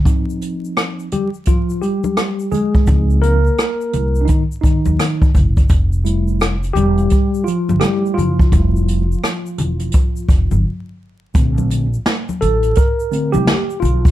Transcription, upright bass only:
X:1
M:4/4
L:1/16
Q:"Swing 16ths" 1/4=85
K:Bb
V:1 name="Upright bass" clef=bass
z16 | _D,,4 z2 C,,2 z3 E,, z2 _G,,,2 | F,,,6 =E,,,2 z3 G,,, z2 _G,,,2 | F,,,4 z2 =E,,,2 z2 F,,, G,,, z4 |
B,,,4 z2 A,,,2 z3 C,, z2 _C,,2 |]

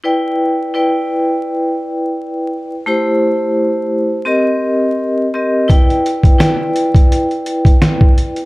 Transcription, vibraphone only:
X:1
M:4/4
L:1/16
Q:"Swing 16ths" 1/4=85
K:Em
V:1 name="Vibraphone"
[EBdg]4 [EBdg]8- [EBdg]3 z | [A,EGc]8 [CG_B_e]6 [CGBe]2 | [EBdg]4 [EBdg]8- [EBdg]3 z |]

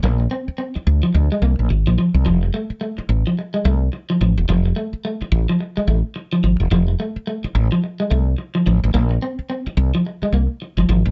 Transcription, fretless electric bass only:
X:1
M:4/4
L:1/16
Q:"Swing 16ths" 1/4=108
K:Bb
V:1 name="Fretless electric bass" clef=bass
B,,,2 z4 D,, z D,, z C,, B,,, _A,,, B,,, z C,, | F,,,2 z4 A,,, z3 C,,2 z2 A,,, =E,,, | F,,,2 z4 A,,, z3 A,,, z3 _A,,, =E,,, | F,,,2 z4 A,,, z3 C,,2 z2 A,,, A,,, |
B,,,2 z4 C,, z3 C,, z2 G,,, _A,,, =A,,, |]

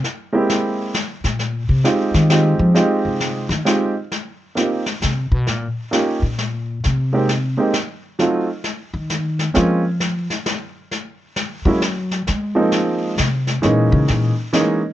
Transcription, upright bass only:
X:1
M:3/4
L:1/8
Q:"Swing" 1/4=132
K:Fm
V:1 name="Upright bass" clef=bass
z4 z B,,- | B,, C, z E,2 F, | z C,2 E, z2 | z4 C, =B,, |
B,, z2 B,,3 | C,3 z3 | z3 E,3 | F,3 z3 |
z3 _G,3 | A,3 z C,2 | B,, D, B,, z3 |]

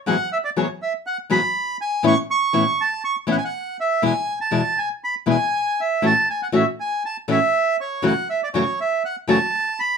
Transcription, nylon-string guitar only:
X:1
M:4/4
L:1/8
Q:1/4=121
K:A
V:1 name="Nylon-string guitar" clef=bass
[G,,E,F,B,FG] z [G,,E,F,B,FG] z2 [G,,E,F,B,FG] z2 | [A,,E,B,CE] z [A,,E,B,CE] z2 [A,,E,B,CE] z2 | [E,,B,,E,G,B,E] z [E,,B,,E,G,B,E] z2 [E,,B,,E,G,B,E] z2 | [A,,E,A,CF] z [A,,E,A,CF] z2 [A,,E,A,CF] z2 |
[F,,C,E,A,CF] z [F,,C,E,A,CF] z2 [F,,C,E,A,CF] z2 |]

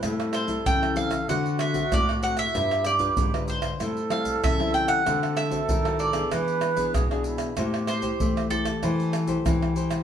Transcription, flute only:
X:1
M:4/4
L:1/8
Q:1/4=96
K:Am
V:1 name="Flute"
A4 ^F4 | G3 z A4 | A4 B2 ^G E | G4- G z g2 |]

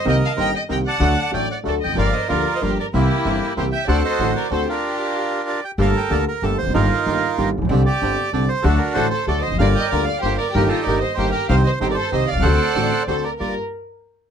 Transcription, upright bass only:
X:1
M:3/4
L:1/16
Q:1/4=189
K:Gm
V:1 name="Upright bass" clef=bass
C,,3/2 z2 z/2 G,,,3/2 z2 z/2 C,,3/2 z2 z/2 | D,,3/2 z2 z/2 A,,,3/2 z2 z/2 D,,3/2 z =E,,,/2 F,,,/2 ^F,,,/2 | G,,,3/2 z2 z/2 D,,3/2 z2 z/2 G,,,3/2 z2 z/2 | C,,3/2 z2 z/2 G,,,3/2 z2 z/2 C,,3/2 z2 z/2 |
D,,3/2 z2 z/2 A,,,3/2 z2 z/2 D,,3/2 z2 z/2 | z12 | G,,,3/2 z2 z/2 D,,3/2 z2 z/2 G,,,3/2 z =E,,,/2 F,,,/2 ^F,,,/2 | G,,,3/2 z2 z/2 G,,,3/2 z2 z/2 G,,,3/2 z A,,,/2 B,,,/2 =B,,,/2 |
C,,3/2 z2 z/2 G,,,3/2 z2 z/2 C,,3/2 z2 z/2 | D,,3/2 z2 z/2 A,,,3/2 z2 z/2 D,,3/2 z =E,,,/2 F,,,/2 ^F,,,/2 | G,,,3/2 z2 z/2 D,,3/2 z2 z/2 G,,,3/2 z2 z/2 | G,,,3/2 z2 z/2 G,,,3/2 z2 z/2 G,,,3/2 z2 z/2 |
C,,3/2 z2 z/2 G,,,3/2 z2 z/2 C,,3/2 z =B,,,/2 C,,/2 ^C,,/2 | D,,3/2 z2 z/2 A,,,3/2 z2 z/2 D,,3/2 z2 z/2 | G,,,2 z8 z2 |]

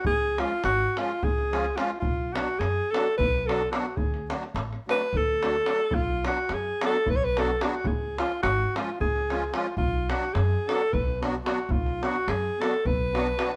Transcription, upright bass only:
X:1
M:7/8
L:1/8
Q:1/4=108
K:none
V:1 name="Upright bass" clef=bass
^C,,2 ^G,,, z C,,3 | B,,,2 ^F,, z B,,,3 | D,,2 A,,, z D,,3 | B,,,2 ^F,, z B,,,3 |
^C,,2 ^G,,, z C,,3 | B,,,2 ^F,, z B,,,3 | B,,,2 ^F,, z B,,,3 |]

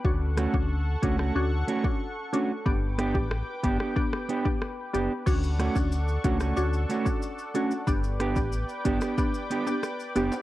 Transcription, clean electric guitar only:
X:1
M:4/4
L:1/16
Q:1/4=92
K:D
V:1 name="Clean electric guitar"
z2 [A,CF] z3 [A,CF] [A,CF] z2 [A,CF] z3 [A,CF] z | z2 [B,DG] z3 [B,DG] [B,DG] z2 [B,DG] z3 [B,DG] z | z2 [A,CF] z3 [A,CF] [A,CF] z2 [A,CF] z3 [A,CF] z | z2 [B,DG] z3 [B,DG] [B,DG] z2 [B,DG] z3 [B,DG] z |]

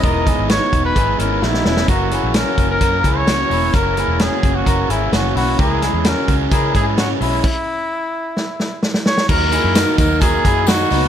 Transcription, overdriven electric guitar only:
X:1
M:4/4
L:1/8
Q:1/4=130
K:C#dor
V:1 name="Overdriven electric guitar" clef=bass
[E,G,B,D] [G,B,D] [E,G,B,D] [G,B,D] [E,G,B,D] [G,B,D] [E,G,B,D] [G,B,D] | [F,,C,E,A,C] [E,A,C] [F,,C,E,A,C] [E,A,C] [C,E,A,C] [E,A,C] [F,,C,E,A,C] [E,A,C] | [F,,C,E,A,C] [E,A,C] [F,,C,E,A,C] [E,A,C] [C,E,A,C] [E,A,C] [F,,C,E,A,C] [E,A,C] | [C,E,G,C] [E,G,C] [C,E,G,C] [E,G,C] [C,E,G,C] [E,G,C] [C,E,G,C] [E,G,C] |
z8 | [D,F,A,D] [F,A,D] [D,F,A,D] [F,A,D] [D,F,A,D] [F,A,D] [D,F,A,D] [F,A,D] |]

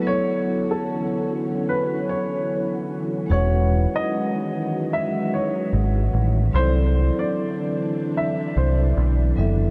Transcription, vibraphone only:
X:1
M:4/4
L:1/8
Q:"Swing 16ths" 1/4=74
K:E
V:1 name="Vibraphone"
[F,B,EAc]8 | [G,CFBf]8 | [F,=CEA=d]6- [F,CEAd] [F,B,EAe] |]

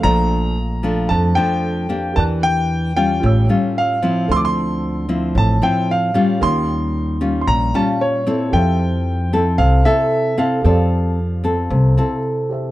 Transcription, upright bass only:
X:1
M:4/4
L:1/8
Q:1/4=113
K:F
V:1 name="Upright bass" clef=bass
B,,,4 F,, z3 | E,,4 A,,, z3 | D,,4 A,,, z3 | _E,,4 B,,, z3 |
F,,4 C,, z3 | F,,4 C,, z3 |]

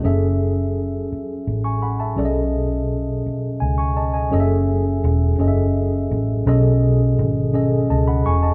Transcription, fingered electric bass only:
X:1
M:6/8
L:1/8
Q:3/8=56
K:F#dor
V:1 name="Fingered electric bass" clef=bass
F,,,3 z A,,,2 | B,,,3 z C,,2 | F,,,2 E,,, F,,,2 A,,, | B,,,2 G,,,2 C,, E,,, |]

